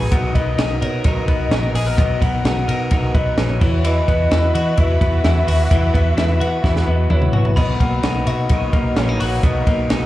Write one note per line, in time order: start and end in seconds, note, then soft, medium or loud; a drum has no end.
0.00 0.12 G#2 medium
0.00 0.11 F#3 soft
0.00 0.11 B3 soft
0.00 0.35 B3 medium
0.00 0.11 D#4 medium
0.00 0.17 D#4 medium
0.00 3.58 D#4 medium
0.00 0.17 G#4 medium
0.00 0.11 B4 medium
0.11 0.31 B1 loud
0.11 0.35 B2 medium
0.11 0.35 D#3 medium
0.11 0.35 F#3 medium
0.11 3.57 B3 medium
0.11 0.35 B3 medium
0.11 0.34 D#4 medium
0.11 3.58 A#4 medium
0.11 0.34 A#4 medium
0.11 0.33 F#5 loud
0.11 kick loud
0.11 hi-hat pedal medium
0.11 ride medium
0.34 0.54 B1 loud
0.34 0.56 F#3 soft
0.34 0.57 B3 soft
0.34 0.58 D#4 medium
0.34 0.58 A#4 medium
0.34 0.83 D#5 loud
0.34 kick medium
0.34 ride medium
0.57 0.77 B1 medium
0.57 0.81 F#3 medium
0.57 0.82 B3 medium
0.57 0.81 D#4 medium
0.57 0.80 A#4 medium
0.57 snare loud
0.57 ride medium
0.81 1.01 B2 medium
0.81 1.04 F#3 soft
0.81 1.05 B3 medium
0.81 1.05 D#4 soft
0.81 1.05 A#4 medium
0.81 1.06 C#5 medium
0.81 ride medium
1.04 1.24 B1 medium
1.04 1.28 B2 medium
1.04 1.28 D#3 medium
1.04 1.29 F#3 medium
1.04 1.29 B3 medium
1.04 1.28 D#4 medium
1.04 1.27 A#4 medium
1.04 1.74 D#5 loud
1.04 kick loud
1.04 ride medium
1.28 1.47 B1 medium
1.28 1.50 F#3 soft
1.28 1.51 B3 medium
1.28 1.52 D#4 soft
1.28 1.52 A#4 medium
1.28 kick medium
1.28 ride medium
1.51 1.70 A#1 loud
1.51 1.75 F#3 medium
1.51 1.75 B3 medium
1.51 1.74 D#4 medium
1.51 1.73 A#4 medium
1.51 snare loud
1.51 ride medium
1.74 1.94 A#1 medium
1.74 1.97 F#3 soft
1.74 1.98 B3 soft
1.74 1.98 D#4 medium
1.74 1.86 G#4 medium
1.74 1.98 A#4 medium
1.74 1.96 D#5 medium
1.74 open hi-hat medium
1.74 ride medium
1.86 2.67 A#4 medium
1.97 2.18 B1 loud
1.97 2.21 B2 medium
1.97 2.22 D#3 medium
1.97 2.22 F#3 medium
1.97 2.21 B3 medium
1.97 2.21 D#4 medium
1.97 2.19 A#4 medium
1.97 2.19 D#5 loud
1.97 kick loud
1.97 hi-hat pedal medium
1.97 ride medium
2.21 2.41 B1 loud
2.21 2.43 F#3 soft
2.21 2.44 B3 soft
2.21 2.45 D#4 medium
2.21 2.44 A#4 medium
2.21 3.15 F#5 loud
2.21 kick medium
2.21 ride medium
2.44 2.64 B1 loud
2.44 2.68 F#3 medium
2.44 2.68 B3 soft
2.44 2.68 D#4 soft
2.44 2.66 A#4 medium
2.44 snare loud
2.44 ride medium
2.68 2.87 B2 medium
2.68 2.90 F#3 soft
2.68 2.91 B3 medium
2.68 2.91 D#4 medium
2.68 2.91 A#4 medium
2.68 ride medium
2.91 3.11 B1 medium
2.91 3.15 B2 medium
2.91 3.15 D#3 medium
2.91 3.15 F#3 medium
2.91 3.15 B3 medium
2.91 3.14 D#4 medium
2.91 3.13 A#4 loud
2.91 kick medium
2.91 ride medium
3.14 3.34 B1 loud
3.14 3.37 F#3 soft
3.14 3.38 B3 medium
3.14 3.38 D#4 medium
3.14 3.38 A#4 medium
3.14 3.40 D#5 medium
3.14 kick loud
3.14 ride medium
3.38 3.57 A#1 loud
3.38 3.61 F#3 medium
3.38 3.62 B3 medium
3.38 3.62 D#4 medium
3.38 3.61 A#4 medium
3.38 3.86 C#5 medium
3.38 snare loud
3.38 ride medium
3.61 4.00 E2 loud
3.61 3.83 E3 medium
3.61 7.54 E3 medium
3.61 3.85 B3 soft
3.61 7.54 E4 medium
3.61 3.85 E4 medium
3.61 7.54 F#4 medium
3.61 3.85 B4 medium
3.61 7.54 B4 medium
3.61 kick loud
3.61 crash medium
3.84 4.08 E3 medium
3.84 4.08 F#3 medium
3.84 4.09 B3 medium
3.84 4.08 E4 medium
3.84 4.07 B4 loud
3.84 4.80 D#5 loud
3.84 hi-hat pedal medium
3.84 ride medium
4.08 4.27 E2 loud
4.08 4.31 B3 soft
4.08 4.32 E4 medium
4.08 4.31 B4 medium
4.08 kick medium
4.08 ride medium
4.31 4.50 E2 loud
4.31 4.55 F#3 medium
4.31 4.55 B3 medium
4.31 4.54 E4 medium
4.31 4.53 B4 medium
4.31 snare loud
4.31 ride medium
4.54 4.74 E3 loud
4.54 4.77 B3 medium
4.54 4.78 E4 medium
4.54 5.47 F#4 medium
4.54 4.78 B4 medium
4.54 ride medium
4.77 4.97 E2 medium
4.77 5.01 E3 medium
4.77 5.01 F#3 medium
4.77 5.01 B3 medium
4.77 5.01 E4 medium
4.77 4.99 B4 medium
4.77 6.90 E5 loud
4.77 kick loud
4.77 ride medium
5.00 5.20 E2 loud
5.00 5.23 B3 soft
5.00 5.24 E4 medium
5.00 5.24 B4 medium
5.00 kick medium
5.00 ride medium
5.24 5.44 E2 medium
5.24 5.47 F#3 medium
5.24 5.48 B3 medium
5.24 5.47 E4 medium
5.24 5.46 B4 medium
5.24 snare loud
5.24 ride medium
5.47 5.67 D#2 medium
5.47 5.71 B3 medium
5.47 5.71 E4 medium
5.47 6.40 F#4 medium
5.47 5.71 B4 medium
5.47 open hi-hat medium
5.47 ride medium
5.71 5.90 E2 loud
5.71 5.94 E3 medium
5.71 5.94 F#3 medium
5.71 5.95 B3 medium
5.71 5.94 E4 medium
5.71 5.93 B4 loud
5.71 kick loud
5.71 hi-hat pedal medium
5.71 ride medium
5.94 6.13 E2 loud
5.94 6.17 B3 medium
5.94 6.18 E4 medium
5.94 6.17 B4 medium
5.94 kick medium
5.94 ride medium
6.17 6.36 E2 medium
6.17 6.41 F#3 medium
6.17 6.41 B3 medium
6.17 6.40 E4 medium
6.17 6.39 B4 medium
6.17 snare loud
6.17 ride medium
6.40 6.60 E3 loud
6.40 6.64 B3 soft
6.40 6.64 E4 medium
6.40 7.33 F#4 medium
6.40 6.64 B4 medium
6.40 ride medium
6.64 6.83 E2 loud
6.64 6.87 E3 medium
6.64 6.87 F#3 medium
6.64 6.88 B3 medium
6.64 6.87 E4 loud
6.64 6.86 B4 medium
6.64 kick loud
6.64 snare medium
6.76 snare medium
6.87 7.07 E2 loud
6.87 7.10 B3 soft
6.87 7.11 E4 medium
6.87 7.10 B4 medium
6.87 7.13 D#5 medium
7.10 7.34 D#2 medium
7.10 7.34 F#3 medium
7.10 7.34 B3 medium
7.10 7.34 E4 medium
7.10 7.32 B4 medium
7.10 7.57 C#5 medium
7.10 mid tom medium
7.22 mid tom medium
7.33 7.53 A#1 medium
7.33 7.56 B3 soft
7.33 7.58 E4 soft
7.33 8.26 F#4 medium
7.33 7.57 B4 medium
7.33 floor tom loud
7.45 floor tom medium
7.56 7.76 B1 loud
7.56 7.80 B2 medium
7.56 10.06 B2 medium
7.56 7.80 D#3 medium
7.56 7.80 F#3 medium
7.56 10.06 A#3 medium
7.56 7.80 B3 medium
7.56 10.06 D#4 medium
7.56 7.79 D#4 medium
7.56 7.78 A#4 medium
7.56 7.68 D#5 loud
7.56 10.06 B5 medium
7.56 kick loud
7.56 crash medium
7.79 8.00 B1 loud
7.79 8.01 F#3 soft
7.79 8.72 A#3 medium
7.79 8.03 B3 soft
7.79 8.03 D#4 medium
7.79 8.03 A#4 medium
7.79 8.28 F#5 loud
7.79 kick medium
7.79 ride medium
8.03 8.23 B1 loud
8.03 8.27 F#3 soft
8.03 8.27 B3 medium
8.03 8.27 D#4 medium
8.03 8.25 A#4 medium
8.03 snare loud
8.03 ride medium
8.27 8.46 B2 loud
8.27 8.50 F#3 soft
8.27 8.50 B3 soft
8.27 8.51 D#4 medium
8.27 9.20 F#4 medium
8.27 8.50 A#4 medium
8.27 8.99 D#5 loud
8.27 ride medium
8.49 8.69 B1 loud
8.49 8.74 B2 medium
8.49 8.74 D#3 medium
8.49 8.74 F#3 medium
8.49 8.73 B3 medium
8.49 8.73 D#4 medium
8.49 8.72 A#4 medium
8.49 kick loud
8.49 ride medium
8.73 8.93 B1 loud
8.73 8.95 F#3 soft
8.73 9.66 A#3 medium
8.73 8.96 B3 medium
8.73 8.97 D#4 medium
8.73 8.97 A#4 medium
8.73 kick medium
8.73 ride medium
8.96 9.16 A#1 loud
8.96 9.20 F#3 medium
8.96 9.20 B3 medium
8.96 9.09 C#4 medium
8.96 9.19 D#4 medium
8.96 9.18 A#4 medium
8.96 9.45 C#5 medium
8.96 snare loud
8.96 ride medium
9.09 9.89 D#4 medium
9.19 9.39 A#1 medium
9.19 9.42 F#3 soft
9.19 9.43 B3 medium
9.19 9.43 D#4 medium
9.19 10.06 F#4 medium
9.19 9.43 A#4 medium
9.19 open hi-hat medium
9.19 ride medium
9.43 9.63 B1 loud
9.43 9.66 B2 medium
9.43 9.67 D#3 medium
9.43 9.67 F#3 medium
9.43 9.67 B3 medium
9.43 9.66 D#4 medium
9.43 9.65 A#4 medium
9.43 9.90 D#5 loud
9.43 kick loud
9.43 hi-hat pedal medium
9.43 ride medium
9.66 9.86 B1 loud
9.66 9.89 F#3 soft
9.66 10.06 A#3 medium
9.66 9.89 B3 soft
9.66 9.90 D#4 medium
9.66 9.90 A#4 medium
9.66 kick medium
9.66 ride medium
9.90 10.06 B1 loud
9.90 10.06 F#3 medium
9.90 10.06 B3 medium
9.90 10.06 D#4 medium
9.90 10.06 A#4 medium
9.90 10.06 D#5 medium
9.90 snare loud
9.90 ride medium